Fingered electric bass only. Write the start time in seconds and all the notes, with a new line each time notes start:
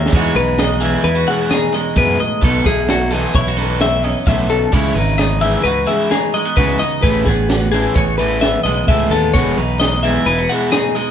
Already playing: D#2
0.13 E2
0.35 B1
1.04 E2
1.96 F#2
2.42 B1
2.66 B1
3.34 B1
4.27 B1
4.73 C#2
4.95 G#1
5.64 C#2
6.57 C#2
7.03 A1
7.26 A1
7.96 A1
8.65 B1
8.88 C#2
9.10 D#2
9.34 E1
9.57 B1
10.26 E1